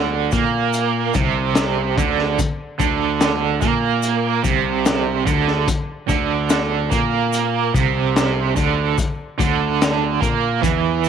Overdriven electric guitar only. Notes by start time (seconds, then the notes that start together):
Already playing: D3
0.32 A#3
1.15 C3
1.98 D3
2.80 D3
3.61 A#3
4.43 C3
5.26 D3
6.08 D3
6.90 A#3
7.74 C3
8.56 D3
9.39 D3
10.21 A#3
10.62 E3